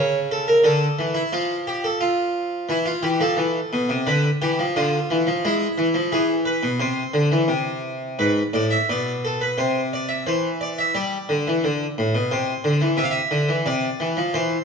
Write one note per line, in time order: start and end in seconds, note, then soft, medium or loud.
0.00 0.63 C#3 medium
0.00 0.18 C#5 medium
0.31 0.48 A4 medium
0.48 0.65 A#4 medium
0.64 0.86 D3 medium
0.64 1.15 A4 medium
0.99 1.20 E3 medium
1.14 1.32 E4 medium
1.33 2.65 F3 medium
1.33 1.55 F4 medium
1.67 1.84 G4 medium
1.84 2.01 A4 medium
2.01 2.67 F4 medium
2.69 2.90 E3 medium
2.69 2.86 E4 medium
2.86 3.03 F4 medium
3.03 3.20 E3 medium
3.03 3.20 G4 medium
3.20 3.37 F3 medium
3.20 4.04 A4 medium
3.37 3.58 E3 medium
3.73 3.89 B2 medium
3.89 4.06 C3 medium
4.07 4.28 D3 medium
4.07 4.28 B4 medium
4.42 4.58 E3 medium
4.42 4.63 G4 medium
4.59 4.75 F3 medium
4.76 4.97 D3 medium
4.76 5.42 F4 medium
5.10 5.26 E3 medium
5.27 5.43 F3 medium
5.45 5.66 G#3 medium
5.45 6.11 E4 medium
5.78 5.94 E3 medium
5.94 6.11 F3 medium
6.12 6.62 E3 medium
6.12 6.34 G#4 medium
6.45 6.67 B4 medium
6.63 6.80 B2 medium
6.80 7.02 C3 medium
6.80 8.16 C5 medium
7.14 7.31 D3 medium
7.32 7.49 E3 medium
7.48 8.17 C3 medium
8.19 8.41 G#2 medium
8.19 8.41 B4 medium
8.53 8.75 A2 medium
8.53 8.71 D5 medium
8.71 8.88 E5 medium
8.89 9.56 B2 medium
8.89 9.11 D5 medium
9.25 9.41 A4 medium
9.41 9.58 B4 medium
9.58 10.24 C3 medium
9.58 9.79 C5 medium
9.93 10.09 D5 medium
10.09 10.25 E5 medium
10.27 10.93 E3 medium
10.27 10.48 C5 medium
10.61 10.77 D5 medium
10.78 10.95 E5 medium
10.95 11.16 G3 medium
10.95 12.27 D5 medium
11.29 11.46 D3 medium
11.47 11.63 E3 medium
11.64 11.85 D3 medium
11.98 12.14 A2 medium
12.15 12.30 B2 medium
12.31 12.52 C3 medium
12.31 12.97 C5 medium
12.64 12.81 D3 medium
12.81 12.98 E3 medium
12.97 13.19 C3 medium
12.97 13.05 E5 medium
13.04 13.11 F5 medium
13.11 13.65 E5 medium
13.31 13.49 D3 medium
13.49 13.66 E3 medium
13.66 13.88 C3 medium
13.66 14.33 D5 medium
14.00 14.18 E3 medium
14.17 14.34 F3 medium
14.34 14.56 E3 medium
14.34 14.64 C5 medium